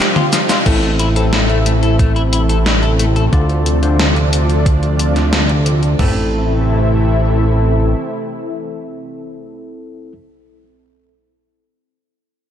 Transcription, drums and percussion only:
0.16 closed hi-hat, high tom
0.33 snare, closed hi-hat, cabasa
0.49 snare, closed hi-hat, cabasa
0.66 kick, closed hi-hat, crash
0.83 closed hi-hat
0.99 closed hi-hat
1.16 closed hi-hat
1.33 snare, closed hi-hat
1.49 closed hi-hat
1.66 closed hi-hat
1.83 closed hi-hat
1.99 kick, closed hi-hat
2.16 closed hi-hat
2.33 closed hi-hat
2.49 closed hi-hat
2.66 snare, closed hi-hat
2.83 closed hi-hat
2.99 closed hi-hat
3.16 closed hi-hat
3.33 kick, closed hi-hat
3.49 closed hi-hat
3.66 closed hi-hat
3.83 closed hi-hat
3.99 snare, closed hi-hat
4.16 closed hi-hat
4.33 closed hi-hat
4.49 closed hi-hat
4.66 kick, closed hi-hat
4.83 closed hi-hat
4.99 closed hi-hat
5.16 snare, closed hi-hat
5.33 snare, closed hi-hat
5.49 closed hi-hat
5.66 closed hi-hat
5.83 closed hi-hat
5.99 kick, floor tom, crash

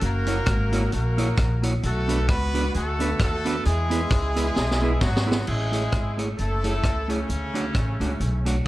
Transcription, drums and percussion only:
0.01 closed hi-hat
0.26 closed hi-hat
0.46 kick, cross-stick, closed hi-hat
0.72 closed hi-hat
0.92 closed hi-hat
1.18 closed hi-hat
1.38 kick, cross-stick, closed hi-hat
1.63 closed hi-hat
1.83 closed hi-hat
2.09 closed hi-hat
2.29 kick, cross-stick, closed hi-hat
2.55 closed hi-hat
2.74 closed hi-hat
3.00 closed hi-hat
3.20 kick, cross-stick, closed hi-hat
3.45 closed hi-hat
3.65 closed hi-hat
3.91 closed hi-hat
4.11 kick, cross-stick, closed hi-hat
4.36 closed hi-hat
4.56 snare
4.71 snare
5.01 kick, snare
5.17 snare
5.32 snare
5.47 crash
5.73 closed hi-hat
5.92 kick, cross-stick, closed hi-hat
6.19 closed hi-hat
6.38 closed hi-hat
6.64 closed hi-hat
6.84 kick, cross-stick, closed hi-hat
7.10 closed hi-hat
7.30 closed hi-hat
7.55 closed hi-hat
7.75 kick, cross-stick, closed hi-hat
8.01 closed hi-hat
8.20 closed hi-hat
8.46 closed hi-hat

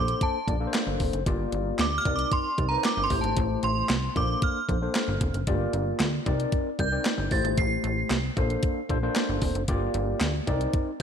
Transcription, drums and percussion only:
0.08 closed hi-hat
0.21 kick, closed hi-hat
0.48 kick, closed hi-hat
0.74 snare, clap, closed hi-hat
1.00 kick, open hi-hat
1.13 closed hi-hat
1.26 kick, closed hi-hat
1.52 closed hi-hat
1.79 snare, clap, closed hi-hat
2.05 kick, closed hi-hat
2.19 closed hi-hat
2.32 kick, closed hi-hat
2.58 kick, closed hi-hat
2.84 snare, clap, closed hi-hat
3.10 kick, open hi-hat
3.24 closed hi-hat
3.37 kick, closed hi-hat
3.63 closed hi-hat
3.89 snare, clap, closed hi-hat
4.16 kick, closed hi-hat
4.42 kick, closed hi-hat
4.69 kick, closed hi-hat
4.95 snare, clap, closed hi-hat
5.21 kick, closed hi-hat
5.34 closed hi-hat
5.47 kick, closed hi-hat
5.73 closed hi-hat
5.99 snare, clap, closed hi-hat
6.26 kick, closed hi-hat
6.40 closed hi-hat
6.52 kick, closed hi-hat
6.79 kick, closed hi-hat
7.05 snare, clap, closed hi-hat
7.31 kick, open hi-hat
7.45 closed hi-hat
7.58 kick, closed hi-hat
7.84 closed hi-hat
8.10 snare, clap, closed hi-hat
8.37 kick, closed hi-hat
8.50 closed hi-hat
8.63 kick, closed hi-hat
8.89 kick, closed hi-hat
9.15 snare, clap, closed hi-hat
9.42 kick, open hi-hat
9.55 closed hi-hat
9.68 kick, closed hi-hat
9.94 closed hi-hat
10.20 snare, clap, closed hi-hat
10.47 kick, closed hi-hat
10.61 closed hi-hat
10.73 kick, closed hi-hat

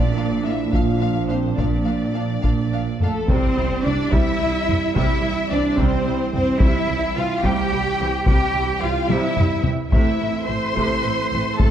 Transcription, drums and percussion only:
0.73 taiko
1.58 taiko
2.44 taiko
3.01 taiko low-mid
3.30 taiko
4.13 taiko
4.69 taiko low-mid
4.96 taiko
5.79 taiko
6.34 taiko low-mid
6.60 taiko
7.43 taiko
8.26 taiko
9.10 taiko high
9.37 taiko low-mid
9.64 taiko low
9.92 taiko
10.77 taiko
11.60 taiko

